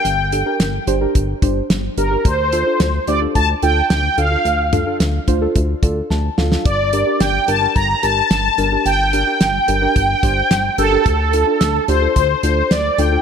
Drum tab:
HH |x-x-x-x-x-x-x-x-|x-x-x-x-x-x-x-x-|x-x-x-x-x-x-----|x-x-x-x-x-x-x-x-|
SD |----o-------o---|----o-------o---|----o-------o-oo|----o-------o---|
T2 |----------------|----------------|--o-------------|----------------|
BD |--------o-o-----|o-------o-------|------o-o-o-----|o-------o-------|

HH |x-x-x-x-x-x-x-x-|x-x-x-x-x-x-x-x-|
SD |----o-------o---|----o-------o---|
T2 |----------------|----------------|
BD |--------o-o-----|o-------o-------|